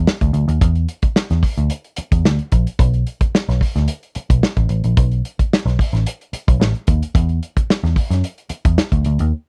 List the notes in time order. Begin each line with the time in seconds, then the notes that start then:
0.07 snare
0.21 D2, kick, closed hi-hat
0.33 D2, closed hi-hat
0.48 D#2, closed hi-hat
0.61 E2, kick, closed hi-hat
0.75 closed hi-hat
0.88 closed hi-hat
1.02 muted picked electric bass stroke, kick, closed hi-hat
1.16 snare
1.30 E2, snare, closed hi-hat
1.43 kick, open hi-hat
1.58 D2, closed hi-hat
1.70 closed hi-hat
1.84 closed hi-hat
1.96 muted picked electric bass stroke, closed hi-hat
2.12 E2, kick, closed hi-hat
2.25 D2, snare
2.39 closed hi-hat
2.52 A#1, kick, closed hi-hat
2.67 closed hi-hat
2.79 B1, kick, closed hi-hat
2.94 closed hi-hat
3.07 closed hi-hat
3.21 muted picked electric bass stroke, kick, closed hi-hat
3.35 snare
3.49 B1, snare, closed hi-hat
3.61 kick, open hi-hat
3.76 D2, snare, closed hi-hat
3.88 closed hi-hat
4.03 closed hi-hat
4.15 muted picked electric bass stroke, closed hi-hat
4.30 B1, kick, closed hi-hat
4.43 snare
4.57 A1, kick, closed hi-hat
4.69 A1, closed hi-hat
4.84 A#1, closed hi-hat
4.97 B1, kick, closed hi-hat
5.12 closed hi-hat
5.25 closed hi-hat
5.39 muted picked electric bass stroke, kick, closed hi-hat
5.53 snare
5.66 B1, snare, closed hi-hat
5.79 kick, open hi-hat
5.93 A1, snare, closed hi-hat
6.06 closed hi-hat
6.21 closed hi-hat
6.33 muted picked electric bass stroke, closed hi-hat
6.48 B1, kick, closed hi-hat
6.60 A1, snare
6.75 closed hi-hat
6.87 D#2, kick, closed hi-hat
7.03 closed hi-hat
7.15 E2, kick, closed hi-hat
7.29 closed hi-hat
7.43 closed hi-hat
7.57 muted picked electric bass stroke, kick, closed hi-hat
7.70 snare
7.84 E2, snare, closed hi-hat
7.96 kick, open hi-hat
8.10 F#2, snare, closed hi-hat
8.24 closed hi-hat
8.38 closed hi-hat
8.49 muted picked electric bass stroke, closed hi-hat
8.65 E2, kick, closed hi-hat
8.78 snare
8.92 D2, kick, closed hi-hat
9.05 D2, closed hi-hat
9.19 D#2, closed hi-hat